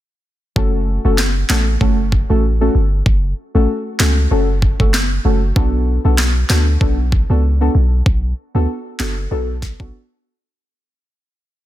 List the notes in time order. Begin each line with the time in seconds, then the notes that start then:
0.56 F#1 A3 C#4 F#4 A4, kick
1.05 F#1 A3 C#4 F#4 A4
1.18 snare, clap
1.49 A1 A3 C#4 F#4 A4, snare, clap
1.81 F#1 A3 C#4 F#4 A4, kick
2.12 kick
2.29 A1 A3 C#4 F#4 A4
2.61 A3 C#4 F#4 A4
2.75 G1
3.06 F#1, kick
3.55 A1 A3 C#4 F#4 A4
4.00 C#2 A3 C#4 F#4 A4, snare, clap
4.31 F#1 A3 C#4 F#4 A4
4.62 kick
4.80 F#1 A3 C#4 F#4 A4, kick
4.94 snare, clap
5.24 F#1 A3 C#4 F#4 A4
5.56 B1 B3 D4 F#4 A4, kick
6.04 B1 B3 D4 F#4 A4
6.18 snare, clap
6.49 D2 B3 D4 F#4 A4, snare, clap
6.81 B1 B3 D4 F#4 A4, kick
7.12 kick
7.30 C#2 B3 D4 F#4 A4
7.61 B3 D4 F#4 A4
7.75 B1
8.06 B1, kick
8.54 D2 B3 D4 F#4 A4
8.99 F#1 B3 D4 F#4 A4, snare, clap
9.31 B1 B3 D4 F#4 A4
9.62 kick, snare
9.80 B1 B3 D4 F#4 A4, kick